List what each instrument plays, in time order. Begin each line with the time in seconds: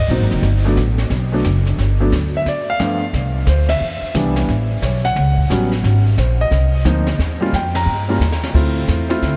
0.00 grand piano D#5
0.08 upright bass A#1, grand piano F#3 A#3 C4 D#4, hi-hat pedal
0.20 upright bass G#1
0.31 upright bass F#1, snare
0.42 upright bass G1, brush sweep, kick, snare
0.65 grand piano F#3 A3 B3 D4
0.77 upright bass A1, kick, snare, hi-hat pedal
0.98 snare
1.10 upright bass B1, brush sweep, kick, snare
1.32 grand piano F#3 A3 B3 D4
1.44 upright bass F#1, kick, snare, hi-hat pedal
1.66 snare
1.78 upright bass G1, brush sweep, kick, snare
2.00 grand piano F#3 A3 B3 D4
2.12 upright bass D2, kick, snare, hi-hat pedal
2.37 grand piano E5
2.46 grand piano D5, brush sweep, kick, snare
2.70 grand piano F5
2.80 grand piano G2 F3 A3 B3 D4, kick, snare, hi-hat pedal
3.13 upright bass C2, brush sweep, kick, snare
3.47 upright bass D2, grand piano C5, kick, snare, hi-hat pedal
3.69 grand piano E5, snare, ride
3.80 upright bass E2, brush sweep
4.02 muted upright bass stroke
4.14 upright bass C2, grand piano E3 G3 B3 D4, kick, snare, hi-hat pedal
4.36 snare
4.48 upright bass A1, brush sweep, kick, snare
4.82 upright bass B1, grand piano C#5, kick, snare, hi-hat pedal
5.05 grand piano F#5, snare
5.16 upright bass C#2, brush sweep, kick, snare
5.38 kick
5.50 upright bass A1, grand piano F#3 G3 B3 C#4, kick, snare, hi-hat pedal
5.72 snare
5.83 upright bass G#1, brush sweep, kick, snare
6.18 upright bass A#1, grand piano C5, kick, snare, hi-hat pedal
6.41 grand piano D#5
6.51 upright bass C2, brush sweep, kick, snare
6.85 upright bass D2, grand piano F3 A#3 C4 D#4, kick, snare, hi-hat pedal
7.07 snare
7.19 upright bass D#2, brush sweep, kick, snare
7.41 grand piano G3 A#3 C#4 F4
7.53 upright bass F2, grand piano G5, kick, snare, hi-hat pedal
7.75 grand piano A#5, snare, ride
7.86 upright bass G2, brush sweep
8.09 grand piano G3 A#3 C#4 F4
8.20 upright bass D#2, snare, hi-hat pedal
8.32 snare
8.44 snare
8.54 upright bass D2, grand piano A3 C4 E4 F4, brush sweep, kick, snare, crash
8.88 upright bass E2, kick, snare, hi-hat pedal
9.09 grand piano A3 C4 E4 F4, snare
9.22 upright bass D2, brush sweep, kick, snare